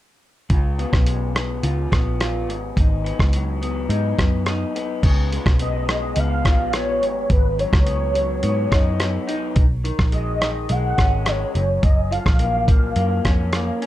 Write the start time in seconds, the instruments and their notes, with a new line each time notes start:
0.50 picked electric bass C#2, clean electric guitar C#3 F4, kick, closed hi-hat
0.79 clean electric guitar B3, closed hi-hat
0.93 picked electric bass B1, kick, cross-stick
1.06 clean electric guitar G#3, closed hi-hat
1.35 clean electric guitar B3, cross-stick, closed hi-hat
1.63 picked electric bass C#2, clean electric guitar F4, closed hi-hat
1.92 picked electric bass A#1, clean electric guitar B3, kick, cross-stick, closed hi-hat
2.21 clean electric guitar F4, cross-stick, closed hi-hat
2.48 picked electric bass G#1, clean electric guitar G#2, closed hi-hat
2.76 picked electric bass G#1, clean electric guitar G#2 D#4, kick, closed hi-hat
3.04 clean electric guitar B3, closed hi-hat
3.19 picked electric bass C#2, kick, cross-stick
3.33 clean electric guitar F#3, closed hi-hat
3.62 clean electric guitar B3, closed hi-hat
3.89 picked electric bass G#2, clean electric guitar D#4, closed hi-hat
4.18 picked electric bass F#2, clean electric guitar B3, kick, cross-stick, closed hi-hat
4.46 clean electric guitar D#4, cross-stick, closed hi-hat
4.75 clean electric guitar B3, closed hi-hat
5.03 picked electric bass C#2, clean electric guitar C#3, kick, closed hi-hat, crash
5.32 clean electric guitar G#3, closed hi-hat
5.46 picked electric bass B1, kick, cross-stick
5.59 clean electric guitar B3, soft synth lead D#5, closed hi-hat
5.89 clean electric guitar G#3, cross-stick, closed hi-hat
6.16 picked electric bass C#2, clean electric guitar B3, soft synth lead F5, closed hi-hat
6.45 picked electric bass A#1, clean electric guitar F4, kick, cross-stick, closed hi-hat
6.73 clean electric guitar B3, soft synth lead C#5, cross-stick, closed hi-hat
7.01 picked electric bass G#1, clean electric guitar G#2, closed hi-hat
7.30 picked electric bass G#1, clean electric guitar G#2, soft synth lead B4, kick, closed hi-hat
7.59 clean electric guitar F#3, soft synth lead C#5, closed hi-hat
7.73 picked electric bass C#2, kick, cross-stick
7.86 clean electric guitar B3, closed hi-hat
8.14 clean electric guitar F#3, closed hi-hat
8.43 picked electric bass G#2, clean electric guitar B3, closed hi-hat
8.71 picked electric bass F#2, clean electric guitar D#4, kick, cross-stick, closed hi-hat
9.00 clean electric guitar B3, cross-stick, closed hi-hat
9.28 clean electric guitar D#4, closed hi-hat
9.56 picked electric bass B1, kick, closed hi-hat
9.85 clean electric guitar D#3, closed hi-hat
9.99 picked electric bass A#1, kick, cross-stick
10.12 clean electric guitar G#3, soft synth lead D#5, closed hi-hat
10.41 clean electric guitar D#3, cross-stick, closed hi-hat
10.69 picked electric bass B1, clean electric guitar G#3, soft synth lead F#5, closed hi-hat
10.98 picked electric bass G#1, clean electric guitar C#4, kick, cross-stick, closed hi-hat
11.25 clean electric guitar G#3, soft synth lead C#5, cross-stick, closed hi-hat
11.54 picked electric bass F#1, clean electric guitar F#2, closed hi-hat
11.82 picked electric bass F#1, clean electric guitar F#2, soft synth lead D#5, kick, closed hi-hat
12.11 clean electric guitar F3, soft synth lead F5, closed hi-hat
12.26 picked electric bass A#1, kick, cross-stick
12.39 clean electric guitar A#3, closed hi-hat
12.68 clean electric guitar F3, kick, closed hi-hat
12.96 picked electric bass F#2, clean electric guitar A#3, closed hi-hat
13.25 picked electric bass F2, clean electric guitar C#4, kick, cross-stick, closed hi-hat
13.53 clean electric guitar A#3, cross-stick, closed hi-hat
13.82 clean electric guitar C#4, closed hi-hat